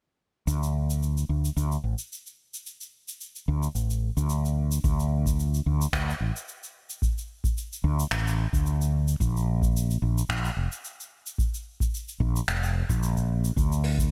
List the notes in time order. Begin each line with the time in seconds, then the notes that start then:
0.47 D2, shaker
0.63 shaker
0.90 shaker
1.03 shaker
1.17 shaker
1.29 D2
1.45 shaker
1.57 D2, shaker
1.72 shaker
1.84 A1
1.99 shaker
2.12 shaker
2.26 shaker
2.54 shaker
2.66 shaker
2.81 shaker
3.08 shaker
3.21 shaker
3.35 shaker
3.48 D2
3.63 shaker
3.75 A1, shaker
3.90 shaker
4.17 D2, shaker
4.30 shaker
4.45 shaker
4.72 shaker
4.84 D2, kick, shaker
4.99 shaker
5.26 kick, shaker
5.39 shaker
5.54 shaker
5.66 D2
5.82 shaker
5.93 D2, finger snap, kick, shaker
6.10 shaker
6.21 A1
6.36 shaker
6.48 shaker
6.63 shaker
6.90 shaker
7.02 kick, shaker
7.18 shaker
7.44 kick, shaker
7.58 shaker
7.73 shaker
7.84 D2
8.00 shaker
8.11 A1, finger snap, shaker
8.27 shaker
8.53 D2, kick, shaker
8.66 shaker
8.81 shaker
9.08 shaker
9.20 A#1, kick, shaker
9.37 shaker
9.62 kick, shaker
9.77 shaker
9.90 shaker
10.02 A#1
10.18 shaker
10.29 A#1, finger snap, kick, shaker
10.45 shaker
10.57 F1
10.72 shaker
10.85 shaker
11.00 shaker
11.26 shaker
11.38 kick, shaker
11.54 shaker
11.80 kick, shaker
11.94 shaker
12.08 shaker
12.20 A#1, kick
12.36 shaker
12.48 F1, finger snap, shaker
12.63 shaker
12.89 A#1, kick, shaker
13.03 shaker
13.17 kick, shaker
13.44 shaker
13.56 D2, kick, shaker
13.72 shaker
13.83 open hi-hat
13.98 kick, shaker